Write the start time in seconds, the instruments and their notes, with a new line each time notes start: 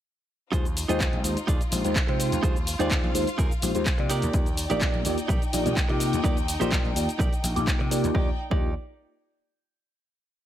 0.52 slap bass D#2, reed electric piano G#3 D#4 F4 G4 C5, clean electric guitar D#4 F4 G#4 C5, violin section D#4 F4, kick, closed hi-hat, shaker
0.65 closed hi-hat, shaker
0.76 muted clean electric guitar stroke, open hi-hat, shaker
0.88 slap bass D#2, reed electric piano G#3 D#4 F4 C5 G5, clean electric guitar D#4 F4 G#4 D#5, closed hi-hat, shaker
1.00 kick, clap, closed hi-hat, shaker
1.13 slap bass A#1, closed hi-hat
1.24 slap bass D#2, reed electric piano G#3 D#4 F4 G4 C5, open hi-hat, shaker
1.37 closed hi-hat, shaker
1.47 slap bass D#2, clean electric guitar D#4 F4 G#4 D5, kick, closed hi-hat, shaker
1.61 muted slap bass stroke, closed hi-hat, shaker
1.71 slap bass A#1, reed electric piano G#3 D#4 F4 G4 C5, muted clean electric guitar stroke, open hi-hat, shaker
1.84 slap bass D#2, reed electric piano G#3 D#4 F4 G4 C5, closed hi-hat, shaker
1.96 kick, clap, closed hi-hat, shaker
2.07 slap bass C3, reed electric piano G#3 D#4 F4 C5 G5, muted clean electric guitar stroke, closed hi-hat
2.19 muted clean electric guitar stroke, open hi-hat, shaker
2.32 slap bass D#2, closed hi-hat, shaker
2.43 slap bass D#2, reed electric piano G#3 G4, clean electric guitar D#4 F4 G#4 C5, violin section F5, kick, closed hi-hat, shaker
2.56 closed hi-hat, shaker
2.67 muted clean electric guitar stroke, open hi-hat, shaker
2.79 slap bass D#2, reed electric piano G#3 D#4 F4 C5 G5, clean electric guitar D#4 F4 G#4 D5, closed hi-hat, shaker
2.91 kick, clap, closed hi-hat, shaker
3.04 slap bass A#1, closed hi-hat
3.14 slap bass D#2, reed electric piano G#3 D#4 F4 G4 C5, open hi-hat, shaker
3.27 closed hi-hat, shaker
3.38 slap bass D#2, clean electric guitar D#4 F4 G#4 A#4, kick, closed hi-hat, shaker
3.51 muted slap bass stroke, closed hi-hat, shaker
3.62 slap bass A#1, reed electric piano G#3 D#4 F4 G4 C5, muted clean electric guitar stroke, open hi-hat, shaker
3.74 slap bass D#2, reed electric piano G#3 D#4 F4 G4 C5, closed hi-hat, shaker
3.86 kick, clap, closed hi-hat, shaker
3.98 slap bass C3, reed electric piano A#3 D#4 F4 G4 D5, muted clean electric guitar stroke, closed hi-hat
4.09 clean electric guitar D#4 G4 A#4 D5, violin section D#4 D5 G5, open hi-hat, shaker
4.22 slap bass D#2, closed hi-hat, shaker
4.33 slap bass D#2, reed electric piano A#3 D#4 F4 G4 D5, kick, closed hi-hat, shaker
4.46 closed hi-hat, shaker
4.57 muted clean electric guitar stroke, open hi-hat, shaker
4.70 slap bass A#1, reed electric piano A#3 D#4 F4 G4 D5, clean electric guitar D#4 G4 A#4 D5, closed hi-hat, shaker
4.81 kick, clap, closed hi-hat, shaker
4.94 slap bass A#1, closed hi-hat
5.05 slap bass D#2, reed electric piano A#3 D#4 F4 G4 D5, open hi-hat, shaker
5.18 closed hi-hat, shaker
5.28 slap bass A#1, clean electric guitar D#4 G4 A#4 D5, kick, closed hi-hat, shaker
5.42 closed hi-hat, shaker
5.53 slap bass A#1, reed electric piano A#3 D#4 F4 G4 D5, muted clean electric guitar stroke, open hi-hat, shaker
5.65 slap bass A#1, reed electric piano A#3 D#4 F4 G4 D5, closed hi-hat, shaker
5.77 kick, clap, closed hi-hat, shaker
5.89 slap bass C3, reed electric piano A#3 D#4 F4 G4 D6, muted clean electric guitar stroke, closed hi-hat
6.00 muted clean electric guitar stroke, open hi-hat, shaker
6.13 slap bass D#2, closed hi-hat, shaker
6.24 slap bass D#2, reed electric piano A#3 D#4 F4 G4 D5, clean electric guitar D#4 G4 A#4 D5, kick, closed hi-hat, shaker
6.37 closed hi-hat, shaker
6.47 muted clean electric guitar stroke, open hi-hat, shaker
6.60 slap bass A#1, reed electric piano A#3 D#4 F4 G4 D5, clean electric guitar D#4 G4 A#4 C5, closed hi-hat, shaker
6.72 kick, clap, closed hi-hat, shaker
6.85 slap bass A#1, closed hi-hat
6.96 slap bass D#2, reed electric piano A#3 D#4 F4 G4 D5, open hi-hat, shaker
7.09 closed hi-hat, shaker
7.19 slap bass A#1, clean electric guitar D#4 G4 A#4 D5, kick, closed hi-hat, shaker
7.33 closed hi-hat, shaker
7.43 slap bass A#1, muted clean electric guitar stroke, open hi-hat, shaker
7.56 slap bass A#1, reed electric piano A#3 D#4 F4 G4 D6, closed hi-hat, shaker
7.67 kick, clap, closed hi-hat, shaker
7.79 slap bass C3, muted clean electric guitar stroke, closed hi-hat
7.90 reed electric piano A#3 D#4 F4 G4 D5, muted clean electric guitar stroke, open hi-hat, shaker
8.04 slap bass D#2, closed hi-hat, shaker
8.14 slap bass D#2, reed electric piano A#3 D#4 F4 D5, clean electric guitar D#4 G4 D5, violin section D#4 D5 G5, kick
8.50 slap bass D#2, reed electric piano A#3 D#4 F4 G4 D5, clean electric guitar D#4 G4 D5, kick